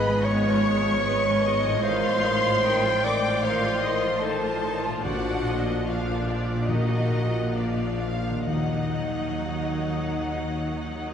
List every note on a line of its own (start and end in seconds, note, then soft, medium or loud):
0.00 1.79 G#1 medium
0.00 1.78 G#2 medium
0.00 1.79 G#2 medium
0.00 1.80 B3 medium
0.00 1.73 F4 medium
0.00 0.26 B4 loud
0.00 0.24 D#5 medium
0.00 2.57 F5 medium
0.00 0.23 B5 medium
0.07 0.25 F3 medium
0.07 0.25 G#3 medium
0.23 0.44 G#3 medium
0.23 0.44 B3 medium
0.23 1.83 C#5 loud
0.23 1.05 C#5 medium
0.23 1.83 C#6 medium
0.45 0.65 F3 medium
0.45 0.63 G#3 medium
0.63 0.83 G#3 medium
0.63 0.84 B3 medium
0.84 1.04 F3 medium
0.84 1.03 G#3 medium
1.03 1.23 G#3 medium
1.03 1.23 B3 medium
1.03 1.43 B4 medium
1.26 1.45 F3 medium
1.26 1.44 G#3 medium
1.41 1.64 G#3 medium
1.41 1.64 B3 medium
1.41 1.82 D#5 medium
1.65 4.98 A2 medium
1.65 1.84 F3 medium
1.65 1.84 G#3 medium
1.70 5.00 C4 medium
1.75 4.94 F4 soft
1.79 4.99 A1 medium
1.79 4.99 A2 medium
1.79 2.01 D#3 medium
1.79 2.01 D#4 medium
1.79 5.05 D#5 medium
1.79 2.63 F5 medium
1.83 3.06 C5 loud
1.83 3.02 C6 loud
2.03 2.23 F3 medium
2.03 2.23 F4 medium
2.22 2.43 D#3 medium
2.22 2.43 D#4 medium
2.42 2.63 F3 medium
2.42 2.63 F4 medium
2.63 2.82 D#3 medium
2.63 2.82 D#4 medium
2.63 3.41 G5 medium
2.83 3.03 F3 medium
2.83 3.03 F4 medium
3.03 3.24 D#3 medium
3.03 3.23 D#4 soft
3.03 3.45 D5 loud
3.03 3.43 D6 medium
3.22 3.43 F3 medium
3.22 3.43 F4 medium
3.42 3.61 D#3 medium
3.42 3.61 D#4 medium
3.42 4.23 C5 medium
3.42 3.81 F5 medium
3.42 4.22 C6 medium
3.62 3.82 F3 medium
3.62 3.82 F4 medium
3.81 4.02 D#3 medium
3.81 4.02 D#4 medium
3.81 4.22 D#5 medium
4.01 4.22 F3 soft
4.01 4.22 F4 medium
4.21 4.40 D#3 soft
4.21 4.40 D#4 soft
4.21 4.76 A4 medium
4.21 5.03 C5 medium
4.21 5.03 A5 medium
4.40 4.61 F3 soft
4.40 4.61 F4 soft
4.61 4.82 D#3 medium
4.61 4.82 D#4 soft
4.83 6.50 A#2 soft
4.83 5.02 F3 medium
4.83 5.03 F4 medium
4.91 6.54 A#3 soft
4.95 6.68 F4 soft
4.99 8.42 A#2 medium
4.99 6.70 D5 soft
4.99 5.86 F#5 medium
5.04 8.42 A#1 medium
5.04 6.24 A#2 medium
5.04 5.82 F3 medium
5.04 5.82 D4 medium
5.04 5.88 F#4 medium
5.04 5.44 D5 medium
5.47 5.87 D#5 medium
5.86 6.68 F3 medium
5.86 6.68 D4 medium
5.86 6.71 F4 medium
5.86 6.68 F5 soft
5.86 6.29 F5 medium
6.31 6.71 D5 soft
6.51 7.35 A#2 soft
6.56 7.39 A#3 soft
6.60 7.54 D#4 soft
6.60 7.56 D#5 soft
6.68 7.50 A#2 medium
6.68 7.53 D#3 soft
6.68 7.55 D#4 medium
6.68 7.55 F#4 medium
6.68 7.55 D#5 medium
6.68 7.54 F#5 soft
7.36 8.41 A#2 soft
7.41 8.32 A#3 soft
7.45 8.45 F4 soft
7.50 8.48 D5 soft
7.54 8.47 F3 soft
7.54 8.47 D4 soft
7.54 8.50 F4 medium
7.54 8.00 D5 soft
7.54 8.46 F5 medium
7.99 8.46 F5 medium
8.29 11.14 D#3 soft
8.33 11.14 A#3 soft
8.38 11.14 F#4 soft
8.42 11.14 D#3 soft
8.42 11.14 D#5 soft
8.42 11.14 D#5 medium
8.42 11.14 F#5 medium
8.47 11.14 D#2 soft
8.47 9.92 D#3 medium
8.47 11.14 F#3 soft
8.47 11.14 D#4 soft
8.47 11.14 D#4 medium